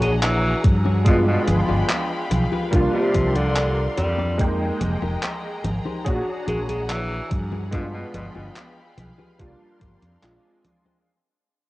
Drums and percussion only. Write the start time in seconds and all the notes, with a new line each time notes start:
0.02 closed hi-hat, high conga
0.23 clap, closed hi-hat, high conga
0.64 kick, closed hi-hat, high conga
0.85 high conga
1.06 kick, closed hi-hat, high conga
1.48 closed hi-hat, high conga
1.69 high conga
1.89 clap, closed hi-hat, high conga
2.31 closed hi-hat, high conga
2.52 high conga
2.73 kick, closed hi-hat, high conga
3.14 kick, closed hi-hat, high conga
3.35 closed hi-hat, high conga
3.56 clap, closed hi-hat, high conga
3.98 closed hi-hat, high conga
4.19 high conga
4.39 kick, closed hi-hat, high conga
4.81 closed hi-hat, high conga
5.02 high conga
5.23 clap, closed hi-hat, high conga
5.64 closed hi-hat, high conga
5.85 high conga
6.06 kick, closed hi-hat, high conga
6.48 closed hi-hat, high conga
6.69 closed hi-hat, high conga
6.89 clap, closed hi-hat, high conga
7.31 kick, closed hi-hat, high conga
7.52 high conga
7.73 kick, closed hi-hat, high conga
8.14 closed hi-hat, high conga
8.35 high conga
8.56 clap, closed hi-hat, high conga
8.98 closed hi-hat, high conga
9.19 high conga
9.39 kick, closed hi-hat, high conga
9.81 kick, closed hi-hat, high conga
10.02 closed hi-hat, high conga
10.23 clap, closed hi-hat
10.64 closed hi-hat, high conga
10.86 high conga